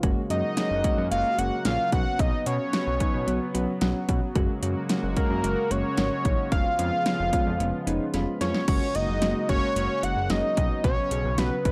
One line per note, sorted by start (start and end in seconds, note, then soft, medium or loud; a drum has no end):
0.00 0.15 F#1 loud
0.00 4.32 C#3 medium
0.00 6.48 F#3 medium
0.00 0.21 G#3 loud
0.00 1.91 G#3 medium
0.00 0.21 A#3 loud
0.00 1.91 A#3 medium
0.00 0.21 C#4 loud
0.00 0.21 F#4 loud
0.00 1.91 F#4 medium
0.00 kick loud
0.00 closed hi-hat medium
0.30 0.42 F#2 loud
0.30 0.48 G#3 medium
0.30 0.48 A#3 medium
0.30 0.48 C#4 medium
0.30 0.48 F#4 medium
0.30 1.07 D#5 loud
0.30 closed hi-hat medium
0.57 0.75 G#3 medium
0.57 0.75 A#3 medium
0.57 0.75 C#4 medium
0.57 0.75 F#4 medium
0.57 snare loud
0.57 closed hi-hat medium
0.71 0.83 F#1 loud
0.84 1.02 G#3 loud
0.84 1.02 A#3 medium
0.84 1.02 C#4 medium
0.84 1.02 F#4 loud
0.84 kick medium
0.84 closed hi-hat medium
0.98 1.10 F#2 loud
1.11 1.23 F#1 loud
1.11 1.29 G#3 medium
1.11 1.29 A#3 medium
1.11 1.29 C#4 medium
1.11 1.29 F#4 medium
1.11 1.40 F5 loud
1.11 closed hi-hat medium
1.38 1.50 F#1 loud
1.38 1.56 G#3 medium
1.38 1.56 A#3 medium
1.38 1.56 C#4 medium
1.38 1.56 F#4 loud
1.38 1.65 F#5 loud
1.38 closed hi-hat medium
1.65 1.78 A#1 loud
1.65 1.83 G#3 medium
1.65 1.83 A#3 medium
1.65 1.83 C#4 medium
1.65 1.83 F4 medium
1.65 1.90 F5 loud
1.65 snare loud
1.65 closed hi-hat medium
1.92 2.05 B1 loud
1.92 2.36 F#3 medium
1.92 4.33 B3 medium
1.92 2.36 B3 medium
1.92 2.36 C#4 medium
1.92 2.36 F#4 medium
1.92 2.21 F#5 loud
1.92 kick loud
1.92 closed hi-hat medium
2.19 2.32 B1 loud
2.19 2.46 D#5 loud
2.19 kick loud
2.19 closed hi-hat medium
2.46 2.59 B2 loud
2.46 2.64 F#3 medium
2.46 2.64 B3 medium
2.46 2.64 C#4 medium
2.46 2.64 F#4 medium
2.46 4.05 C#5 loud
2.46 closed hi-hat medium
2.73 2.91 F#3 medium
2.73 2.91 B3 medium
2.73 2.91 C#4 medium
2.73 2.91 F#4 medium
2.73 snare loud
2.73 closed hi-hat medium
2.87 2.99 B1 medium
3.00 3.18 F#3 medium
3.00 3.18 B3 medium
3.00 3.18 C#4 medium
3.00 3.18 D#4 loud
3.00 kick medium
3.00 closed hi-hat medium
3.14 3.26 B2 medium
3.27 3.40 B1 loud
3.27 3.45 F#3 medium
3.27 3.45 B3 medium
3.27 3.45 C#4 medium
3.27 3.45 F#4 loud
3.27 closed hi-hat medium
3.54 3.67 B1 loud
3.54 3.72 F#3 loud
3.54 3.72 B3 loud
3.54 3.72 C#4 loud
3.54 3.72 F#4 loud
3.54 3.80 B5 medium
3.54 closed hi-hat medium
3.81 3.94 B1 loud
3.81 3.99 F#3 medium
3.81 3.99 B3 medium
3.81 3.99 C#4 medium
3.81 3.99 F#4 loud
3.81 4.32 F#5 medium
3.81 snare loud
3.81 closed hi-hat medium
4.09 4.21 B2 loud
4.09 4.26 F#3 medium
4.09 4.26 B3 medium
4.09 4.26 C#4 medium
4.09 4.26 F#4 loud
4.09 kick medium
4.09 closed hi-hat medium
4.35 4.48 F#1 loud
4.35 8.64 C#3 medium
4.35 8.64 G#3 medium
4.35 4.53 G#3 loud
4.35 6.50 A#3 medium
4.35 4.53 A#3 loud
4.35 4.53 C#4 loud
4.35 6.50 F#4 medium
4.35 4.53 F#4 loud
4.35 kick loud
4.35 closed hi-hat medium
4.63 4.75 F#2 loud
4.63 4.80 G#3 medium
4.63 4.80 A#3 medium
4.63 4.80 C#4 medium
4.63 4.80 F#4 medium
4.63 closed hi-hat medium
4.89 5.07 G#3 medium
4.89 5.07 A#3 medium
4.89 5.07 C#4 medium
4.89 5.07 F#4 medium
4.89 snare loud
4.89 closed hi-hat medium
5.03 5.15 F#1 medium
5.17 5.34 G#3 loud
5.17 5.34 A#3 medium
5.17 5.34 C#4 medium
5.17 5.34 F#4 loud
5.17 5.72 A#4 medium
5.17 kick medium
5.17 closed hi-hat medium
5.30 5.42 F#2 loud
5.44 5.56 F#1 loud
5.44 5.61 G#3 medium
5.44 5.61 A#3 medium
5.44 5.61 C#4 medium
5.44 5.61 F#4 medium
5.44 closed hi-hat medium
5.71 5.83 F#1 loud
5.71 5.88 G#3 medium
5.71 5.88 A#3 medium
5.71 5.88 C#4 medium
5.71 5.88 F#4 loud
5.71 6.51 C#5 loud
5.71 closed hi-hat medium
5.97 6.10 G#1 loud
5.97 6.15 G#3 medium
5.97 6.15 A#3 medium
5.97 6.15 C#4 medium
5.97 6.15 F#4 medium
5.97 snare loud
5.97 closed hi-hat medium
6.25 6.37 A#1 loud
6.25 6.42 G#3 medium
6.25 6.42 A#3 medium
6.25 6.42 C#4 medium
6.25 6.42 D#4 medium
6.25 kick loud
6.25 closed hi-hat medium
6.52 6.64 F1 loud
6.52 8.66 F3 medium
6.52 6.69 G#3 loud
6.52 8.66 B3 medium
6.52 6.69 B3 medium
6.52 6.69 C#4 medium
6.52 6.69 F4 loud
6.52 8.66 F4 medium
6.52 8.10 F5 loud
6.52 kick loud
6.52 closed hi-hat medium
6.79 6.91 F2 loud
6.79 6.96 G#3 medium
6.79 6.96 B3 medium
6.79 6.96 C#4 medium
6.79 6.96 F4 medium
6.79 closed hi-hat medium
7.06 7.24 G#3 medium
7.06 7.23 B3 medium
7.06 7.24 C#4 medium
7.06 7.24 F4 medium
7.06 snare loud
7.06 closed hi-hat medium
7.19 7.31 F1 medium
7.33 7.51 G#3 loud
7.33 7.51 B3 loud
7.33 7.51 C#4 loud
7.33 7.51 F4 loud
7.33 kick medium
7.33 closed hi-hat medium
7.46 7.59 F2 medium
7.60 7.72 F1 loud
7.60 7.78 G#3 medium
7.60 7.78 B3 medium
7.60 7.78 C#4 medium
7.60 7.78 F4 medium
7.60 closed hi-hat medium
7.87 7.99 F1 loud
7.87 8.05 G#3 loud
7.87 8.05 B3 loud
7.87 8.05 C#4 loud
7.87 8.05 D#4 loud
7.87 closed hi-hat medium
8.14 8.26 F1 loud
8.14 8.32 G#3 medium
8.14 8.32 B3 medium
8.14 8.32 C#4 medium
8.14 8.32 F4 medium
8.14 8.64 B5 medium
8.14 snare medium
8.14 closed hi-hat medium
8.41 8.53 F2 loud
8.41 8.59 G#3 medium
8.41 8.59 B3 medium
8.41 8.59 C#4 medium
8.41 8.59 F4 loud
8.41 8.66 C#5 medium
8.41 snare medium
8.41 closed hi-hat medium
8.55 snare medium
8.68 8.80 F#1 loud
8.68 11.72 C#3 medium
8.68 11.72 F#3 medium
8.68 10.55 G#3 medium
8.68 8.86 G#3 medium
8.68 10.55 A#3 medium
8.68 8.86 A#3 medium
8.68 8.86 C#4 medium
8.68 10.55 F#4 medium
8.68 8.86 F#4 loud
8.68 8.97 C#5 loud
8.68 kick loud
8.68 closed hi-hat medium
8.68 crash medium
8.95 9.07 F#1 loud
8.95 9.13 G#3 medium
8.95 9.13 A#3 medium
8.95 9.13 C#4 medium
8.95 9.13 F#4 medium
8.95 9.49 D#5 loud
8.95 closed hi-hat medium
9.09 9.21 F#1 loud
9.22 9.34 F#1 loud
9.22 9.40 G#3 medium
9.22 9.40 A#3 medium
9.22 9.40 C#4 medium
9.22 9.40 F#4 loud
9.22 snare loud
9.22 closed hi-hat medium
9.49 9.61 F#1 loud
9.49 9.67 G#3 medium
9.49 9.67 A#3 medium
9.49 9.67 C#4 medium
9.49 9.67 F#4 medium
9.49 10.05 C#5 loud
9.49 kick medium
9.49 closed hi-hat medium
9.76 9.88 F#1 loud
9.76 9.94 G#3 medium
9.76 9.94 A#3 medium
9.76 9.94 C#4 medium
9.76 9.94 F#4 medium
9.76 closed hi-hat medium
10.03 10.15 F#1 loud
10.03 10.21 G#3 medium
10.03 10.21 A#3 medium
10.03 10.21 C#4 medium
10.03 10.21 F#4 medium
10.03 10.32 F#5 loud
10.03 closed hi-hat medium
10.17 10.29 F#1 medium
10.30 10.42 F#1 loud
10.30 10.48 G#3 medium
10.30 10.48 A#3 medium
10.30 10.48 C#4 medium
10.30 10.48 F#4 loud
10.30 10.84 D#5 loud
10.30 snare loud
10.30 closed hi-hat medium
10.57 10.69 B1 medium
10.57 11.00 F#3 medium
10.57 11.72 B3 medium
10.57 11.00 B3 medium
10.57 11.00 C#4 medium
10.57 11.00 F#4 medium
10.57 kick loud
10.57 closed hi-hat medium
10.84 10.96 B1 loud
10.84 11.40 C#5 loud
10.84 kick loud
10.84 closed hi-hat medium
11.11 11.23 B1 medium
11.11 11.29 F#3 medium
11.11 11.29 B3 medium
11.11 11.29 C#4 medium
11.11 11.29 G#4 medium
11.11 closed hi-hat medium
11.25 11.37 B1 loud
11.38 11.50 B1 medium
11.38 11.56 F#3 medium
11.38 11.56 B3 medium
11.38 11.56 C#4 medium
11.38 11.56 F#4 loud
11.38 11.65 B4 medium
11.38 snare loud
11.38 closed hi-hat medium
11.65 11.72 B1 loud
11.65 11.72 F#3 medium
11.65 11.72 B3 medium
11.65 11.72 C#4 medium
11.65 11.72 F#4 medium
11.65 11.72 B4 medium
11.65 kick medium
11.65 closed hi-hat medium